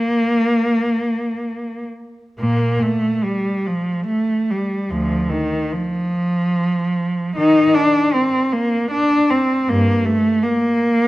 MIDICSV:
0, 0, Header, 1, 2, 480
1, 0, Start_track
1, 0, Key_signature, -2, "major"
1, 0, Tempo, 1039861
1, 589, Tempo, 1125704
1, 1069, Tempo, 853485
1, 1070, Time_signature, 3, 2, 24, 8
1, 1549, Tempo, 821918
1, 3949, Tempo, 744417
1, 4429, Tempo, 786370
1, 5389, Tempo, 738916
1, 6295, End_track
2, 0, Start_track
2, 0, Title_t, "Cello"
2, 0, Program_c, 0, 42
2, 0, Note_on_c, 0, 58, 61
2, 842, Note_off_c, 0, 58, 0
2, 1067, Note_on_c, 0, 46, 46
2, 1067, Note_on_c, 0, 58, 51
2, 1291, Note_off_c, 0, 46, 0
2, 1291, Note_off_c, 0, 58, 0
2, 1307, Note_on_c, 0, 57, 54
2, 1540, Note_on_c, 0, 55, 52
2, 1548, Note_off_c, 0, 57, 0
2, 1789, Note_off_c, 0, 55, 0
2, 1793, Note_on_c, 0, 53, 52
2, 2024, Note_on_c, 0, 57, 58
2, 2037, Note_off_c, 0, 53, 0
2, 2269, Note_off_c, 0, 57, 0
2, 2278, Note_on_c, 0, 55, 47
2, 2513, Note_on_c, 0, 38, 41
2, 2514, Note_on_c, 0, 53, 55
2, 2517, Note_off_c, 0, 55, 0
2, 2734, Note_off_c, 0, 38, 0
2, 2744, Note_on_c, 0, 51, 54
2, 2752, Note_off_c, 0, 53, 0
2, 2989, Note_off_c, 0, 51, 0
2, 2995, Note_on_c, 0, 53, 54
2, 3948, Note_on_c, 0, 63, 62
2, 3951, Note_off_c, 0, 53, 0
2, 3953, Note_on_c, 0, 51, 56
2, 4174, Note_off_c, 0, 51, 0
2, 4183, Note_off_c, 0, 63, 0
2, 4195, Note_on_c, 0, 62, 64
2, 4433, Note_off_c, 0, 62, 0
2, 4443, Note_on_c, 0, 60, 54
2, 4677, Note_off_c, 0, 60, 0
2, 4685, Note_on_c, 0, 58, 59
2, 4918, Note_on_c, 0, 62, 67
2, 4923, Note_off_c, 0, 58, 0
2, 5152, Note_off_c, 0, 62, 0
2, 5156, Note_on_c, 0, 60, 57
2, 5391, Note_off_c, 0, 60, 0
2, 5392, Note_on_c, 0, 43, 49
2, 5393, Note_on_c, 0, 58, 64
2, 5623, Note_off_c, 0, 43, 0
2, 5631, Note_on_c, 0, 57, 64
2, 5640, Note_off_c, 0, 58, 0
2, 5873, Note_on_c, 0, 58, 69
2, 5878, Note_off_c, 0, 57, 0
2, 6295, Note_off_c, 0, 58, 0
2, 6295, End_track
0, 0, End_of_file